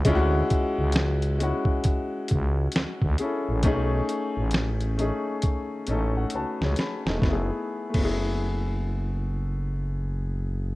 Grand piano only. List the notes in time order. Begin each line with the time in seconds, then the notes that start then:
0.05 G#3 C#4 E4 F4
0.15 F#4
1.39 G#3 C#4 E4
1.43 F#4
3.19 C#4 E4 G#4 A4
3.63 A3 C#4 D#4
3.67 G#4
4.97 A3 C#4 D#4 G#4
5.87 A3 C#4 D#4 A4 D#5
6.17 F#5
6.35 F#4 B4 A5
6.63 G#4 C#5
6.79 B5
7.07 D#4 A4
7.17 A3
7.22 B3
7.27 E4
7.32 G#4
7.90 A3
7.95 B3
8.00 E4
8.04 G#4